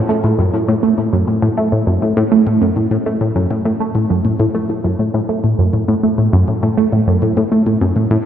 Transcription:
0.09 0.20 A3 medium
0.24 0.34 A2 medium
0.39 0.49 F#2 medium
0.53 0.64 A2 medium
0.68 0.75 A2 loud
0.83 0.94 A3 medium
0.98 1.09 A2 medium
1.13 1.23 F#2 loud
1.28 1.38 A2 medium
1.43 1.49 A2 loud
1.57 1.68 A3 medium
1.72 1.83 A2 medium
1.87 1.98 F#2 loud
2.02 2.13 A2 medium
2.17 2.23 A2 loud
2.32 2.42 A3 medium
2.47 2.57 A2 medium
2.62 2.72 F#2 loud
2.76 2.87 A2 medium
2.91 2.97 A2 medium
3.06 3.17 A3 medium
3.21 3.31 A2 medium
3.36 3.46 F#2 loud
3.51 3.61 A2 medium
3.65 3.72 A2 loud
3.80 3.91 A3 medium
3.95 4.06 A2 medium
4.10 4.21 F#2 medium
4.25 4.35 A2 medium
4.40 4.46 A2 loud
4.55 4.65 A3 medium
4.69 4.80 A2 medium
4.84 4.95 F#2 loud
4.99 5.10 A2 medium
5.14 5.20 A2 loud
5.29 5.39 A3 medium
5.44 5.54 A2 medium
5.59 5.69 F#2 loud
5.73 5.84 A2 medium
5.88 5.95 A2 loud
6.03 6.14 A3 medium
6.18 6.28 A2 medium
6.33 6.43 F#2 loud
6.48 6.58 A2 medium
6.63 6.69 A2 loud
6.77 6.88 A3 medium
6.92 7.03 A2 medium
7.07 7.18 F#2 loud
7.22 7.32 A2 medium
7.37 7.43 A2 medium
7.52 7.62 A3 medium
7.67 7.77 A2 medium
7.81 7.92 F#2 loud
7.96 8.07 A2 medium
8.11 8.17 A2 loud

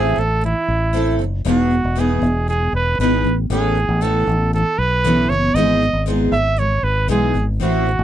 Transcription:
0.00 0.14 A1 medium
0.00 0.15 A2 medium
0.00 0.17 E3 medium
0.00 0.18 C4 medium
0.00 0.18 E4 medium
0.00 0.20 G#4 medium
0.00 0.18 A4 medium
0.16 0.53 A1 medium
0.16 0.37 A2 soft
0.16 0.39 E3 soft
0.16 0.44 A4 medium
0.41 0.63 A2 medium
0.41 0.64 E3 medium
0.41 1.17 E4 medium
0.68 1.20 A1 medium
0.93 1.18 A2 medium
0.93 1.20 E3 medium
0.93 1.20 C4 medium
0.93 1.20 E4 medium
0.93 1.20 A4 medium
1.19 1.43 F#1 medium
1.19 1.40 A2 soft
1.19 1.41 E3 medium
1.45 1.81 E1 medium
1.45 1.68 E2 medium
1.45 1.70 B2 medium
1.45 1.71 E3 medium
1.45 1.71 B3 medium
1.45 1.72 D#4 medium
1.45 1.72 G#4 medium
1.49 2.01 F#4 medium
1.70 1.91 E2 soft
1.70 1.92 B2 soft
1.70 1.92 E3 soft
1.84 2.20 E1 medium
1.96 2.20 E2 medium
1.96 2.22 B2 medium
1.96 2.22 E3 medium
1.96 2.23 B3 medium
1.96 2.23 D#4 medium
1.96 2.23 G#4 medium
1.96 2.48 G#4 medium
2.22 2.69 E1 medium
2.22 2.43 E2 soft
2.22 2.43 B2 soft
2.22 2.44 E3 soft
2.48 2.68 E2 medium
2.48 2.69 B2 soft
2.48 2.69 E3 medium
2.48 2.72 G#4 medium
2.73 2.97 E1 medium
2.73 2.98 B4 medium
2.98 3.22 G#1 medium
2.98 3.25 E2 medium
2.98 3.24 B2 medium
2.98 3.25 E3 medium
2.98 3.26 B3 medium
2.98 3.26 D#4 medium
2.98 3.26 G#4 medium
2.98 3.35 B4 medium
3.24 3.48 A1 medium
3.24 3.45 A2 soft
3.24 3.46 E3 soft
3.50 3.86 A1 medium
3.50 3.74 A2 medium
3.50 3.76 E3 medium
3.50 3.77 B3 medium
3.50 3.77 C#4 medium
3.50 4.04 G#4 medium
3.50 3.77 A4 medium
3.75 3.96 A2 soft
3.75 3.97 E3 soft
3.89 4.24 A1 medium
4.01 4.26 A2 medium
4.01 4.27 E3 medium
4.01 4.28 B3 medium
4.01 4.28 C#4 medium
4.01 4.53 A4 medium
4.01 4.28 A4 medium
4.27 4.63 A1 medium
4.27 4.48 A2 soft
4.27 4.49 E3 soft
4.53 4.74 A2 medium
4.53 4.75 E3 medium
4.53 4.80 A4 medium
4.78 5.26 B1 medium
4.78 5.31 B4 loud
5.04 5.29 A2 medium
5.04 5.30 E3 medium
5.04 5.30 B3 medium
5.04 5.30 C#4 medium
5.04 5.30 A4 medium
5.29 5.53 F#1 medium
5.29 5.50 A2 soft
5.29 5.51 E3 soft
5.29 5.56 C#5 medium
5.54 5.90 G#1 medium
5.54 5.80 G#2 medium
5.54 5.80 E3 medium
5.54 5.81 G#3 medium
5.54 5.81 B3 medium
5.54 5.81 D#4 medium
5.54 5.82 G#4 medium
5.54 6.05 D#5 loud
5.81 6.01 G#2 soft
5.81 6.02 E3 soft
5.81 6.02 G#3 soft
5.93 6.29 G#1 medium
6.06 6.31 G#2 medium
6.06 6.32 E3 medium
6.06 6.32 G#3 medium
6.06 6.33 B3 medium
6.06 6.33 D#4 medium
6.06 6.33 G#4 medium
6.32 6.79 G#1 medium
6.32 6.53 G#2 soft
6.32 6.53 E3 soft
6.32 6.60 E5 medium
6.56 6.78 G#2 medium
6.56 6.78 E3 medium
6.56 6.79 G#3 medium
6.56 6.85 C#5 medium
6.83 7.07 G#1 medium
6.83 7.09 B4 medium
7.08 7.32 B1 medium
7.08 7.33 G#2 medium
7.08 7.34 E3 medium
7.08 7.35 G#3 medium
7.08 7.35 B3 medium
7.08 7.35 D#4 medium
7.08 7.35 G#4 medium
7.08 7.46 G#4 medium
7.34 7.58 G#1 medium
7.34 7.55 G#2 soft
7.34 7.55 E3 soft
7.34 7.56 G#3 soft
7.60 7.96 A1 medium
7.60 7.85 A2 medium
7.60 7.86 E3 medium
7.60 7.86 A3 medium
7.60 7.86 C4 medium
7.60 7.87 E4 medium
7.60 8.04 F#4 medium
7.86 8.04 A2 soft
7.86 8.04 E3 soft
7.99 8.04 A1 loud

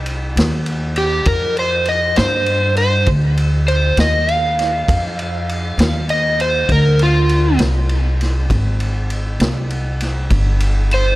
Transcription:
0.00 0.34 C2 medium
0.06 ride medium
0.36 1.24 D#2 medium
0.36 snare loud
0.36 ride medium
0.66 ride medium
0.96 1.26 G4 medium
0.96 ride medium
1.25 2.14 F2 medium
1.25 1.56 A#4 medium
1.25 kick loud
1.25 ride medium
1.57 1.87 C5 medium
1.57 ride soft
1.85 2.17 D#5 medium
1.85 ride medium
2.16 3.05 G2 medium
2.16 2.75 C5 medium
2.16 snare loud
2.16 ride medium
2.46 ride medium
2.76 3.07 C5 medium
2.76 ride medium
3.06 3.95 D2 medium
3.06 kick medium
3.06 ride medium
3.37 ride medium
3.68 3.97 C5 medium
3.68 ride medium
3.97 4.85 D#2 medium
3.97 4.31 D#5 medium
3.97 snare loud
3.97 ride medium
4.29 6.06 F5 medium
4.29 ride medium
4.59 snare soft
4.59 ride medium
4.88 5.76 F2 medium
4.88 kick loud
4.88 ride medium
5.19 ride medium
5.49 ride medium
5.78 6.66 D#2 medium
5.78 snare loud
5.78 ride medium
6.09 6.39 D#5 medium
6.09 ride medium
6.40 6.69 C5 medium
6.40 ride medium
6.69 7.56 D2 medium
6.69 7.00 A#4 medium
6.69 kick loud
6.69 ride medium
6.99 7.59 F4 medium
6.99 ride medium
7.29 ride medium
7.59 8.47 C2 medium
7.59 snare loud
7.59 ride medium
7.89 ride medium
8.21 snare soft
8.21 ride medium
8.50 9.37 G#1 medium
8.50 kick loud
8.50 ride medium
8.80 ride medium
9.10 ride medium
9.40 10.27 C2 medium
9.40 snare loud
9.40 ride medium
9.70 ride medium
10.00 snare soft
10.00 ride medium
10.30 11.16 G1 medium
10.30 kick medium
10.30 ride medium
10.60 ride medium
10.91 11.16 C5 medium
10.91 ride medium

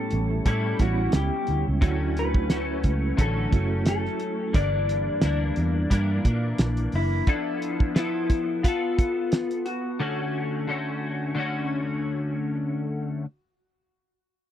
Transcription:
0.00 0.45 A2 medium
0.00 0.45 G3 medium
0.00 0.81 G3 medium
0.00 0.78 B3 medium
0.00 0.47 C#4 medium
0.00 0.79 C#4 medium
0.00 0.47 E4 medium
0.00 0.80 E4 medium
0.00 0.44 A4 medium
0.11 0.39 A1 loud
0.11 closed hi-hat medium
0.46 0.73 A2 loud
0.46 0.80 A2 medium
0.46 0.80 G3 medium
0.46 0.80 C#4 medium
0.46 0.78 E4 loud
0.46 0.81 A4 medium
0.46 kick medium
0.46 closed hi-hat loud
0.78 1.07 A1 loud
0.78 1.48 G3 medium
0.78 1.47 B3 medium
0.78 1.48 C#4 medium
0.78 1.82 C#4 soft
0.78 1.82 E4 soft
0.78 1.48 E4 medium
0.78 1.15 F#4 medium
0.78 kick loud
0.78 closed hi-hat medium
0.82 1.81 G3 soft
1.12 1.29 C#2 loud
1.12 1.64 G4 medium
1.12 snare loud
1.12 closed hi-hat loud
1.47 1.63 D2 medium
1.47 closed hi-hat medium
1.68 1.80 C#2 loud
1.81 2.80 D2 loud
1.81 2.55 D3 medium
1.81 2.49 F#3 medium
1.81 2.73 A3 medium
1.81 2.50 A3 medium
1.81 2.74 C#4 medium
1.81 2.51 C#4 loud
1.81 2.74 E4 medium
1.81 2.75 F#4 loud
1.81 kick loud
1.81 closed hi-hat medium
2.17 3.21 B4 medium
2.17 closed hi-hat medium
2.34 kick loud
2.50 3.17 F#3 medium
2.50 3.18 A3 medium
2.50 3.18 C#4 medium
2.50 snare loud
2.50 closed hi-hat medium
2.84 3.11 C#2 loud
2.84 kick medium
2.84 closed hi-hat medium
3.17 3.46 A1 loud
3.17 3.52 D3 medium
3.17 3.52 F#3 medium
3.17 3.53 A3 medium
3.17 3.51 C#4 medium
3.17 3.87 A4 loud
3.17 kick medium
3.17 closed hi-hat loud
3.51 4.07 F#1 medium
3.51 4.54 F#3 soft
3.51 4.20 A3 medium
3.51 4.55 A3 soft
3.51 4.54 C#4 medium
3.51 4.21 C#4 medium
3.51 4.21 E4 medium
3.51 4.21 F#4 medium
3.51 kick loud
3.51 closed hi-hat medium
3.86 4.55 A4 medium
3.86 snare loud
3.86 closed hi-hat medium
4.05 snare soft
4.20 closed hi-hat medium
4.53 5.09 G1 loud
4.53 5.21 G2 medium
4.53 5.23 E3 medium
4.53 5.23 A#3 medium
4.53 5.24 D4 medium
4.53 5.87 D5 loud
4.53 kick loud
4.53 closed hi-hat medium
4.89 closed hi-hat medium
5.21 5.50 D2 medium
5.21 5.89 G2 medium
5.21 5.91 E3 medium
5.21 5.91 A#3 medium
5.21 snare loud
5.21 closed hi-hat medium
5.26 5.92 D4 medium
5.56 5.84 E2 loud
5.56 closed hi-hat medium
5.90 6.25 G2 loud
5.90 6.18 G2 loud
5.90 6.25 E3 loud
5.90 6.25 A#3 loud
5.90 6.23 D4 loud
5.90 kick medium
5.90 closed hi-hat loud
6.24 6.52 A#2 medium
6.24 7.27 E3 soft
6.24 7.27 A#3 soft
6.24 7.27 D4 medium
6.24 kick loud
6.24 closed hi-hat medium
6.58 6.86 A#1 loud
6.58 snare loud
6.58 closed hi-hat loud
6.77 closed hi-hat medium
6.92 7.21 F#1 loud
6.92 7.29 E4 medium
6.92 open hi-hat medium
7.27 7.94 F3 medium
7.27 7.95 B3 medium
7.27 7.92 D4 medium
7.27 7.96 E4 medium
7.27 7.98 A4 medium
7.27 kick loud
7.27 closed hi-hat medium
7.62 closed hi-hat medium
7.80 kick loud
7.95 8.63 F3 medium
7.95 8.63 B3 medium
7.95 8.63 E4 medium
7.95 8.65 E4 medium
7.95 8.67 A4 medium
7.95 snare loud
7.95 closed hi-hat medium
8.30 kick medium
8.30 closed hi-hat medium
8.63 10.00 B3 medium
8.63 9.62 F4 loud
8.63 kick loud
8.63 closed hi-hat loud
8.68 10.01 A4 loud
8.99 kick loud
8.99 closed hi-hat medium
9.32 snare loud
9.32 closed hi-hat medium
9.51 closed hi-hat medium
9.66 12.00 F#4 medium
9.66 closed hi-hat medium
10.00 10.67 D3 medium
10.00 10.68 A3 medium
10.00 10.69 C#4 medium
10.00 10.70 F#4 medium
10.67 11.34 D3 medium
10.67 11.36 A3 medium
10.67 11.38 C#4 medium
10.67 11.39 F#4 medium
11.35 13.25 D3 loud
11.35 13.25 A3 medium
11.35 13.25 C#4 loud
11.40 13.25 F#4 loud

